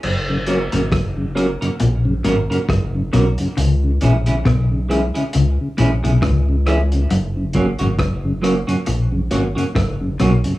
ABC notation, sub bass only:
X:1
M:4/4
L:1/16
Q:"Swing 16ths" 1/4=68
K:F#mix
V:1 name="Sub bass" clef=bass
F,,,3 G,,, F,,,3 z A,,,2 G,,, z F,,,2 B,,, z | C,,2 A,,,2 B,,,3 z C,, z A,,, B,,, C,,4 | F,,,3 G,,, F,,,3 z A,,,2 G,,, z F,,,2 B,,, z |]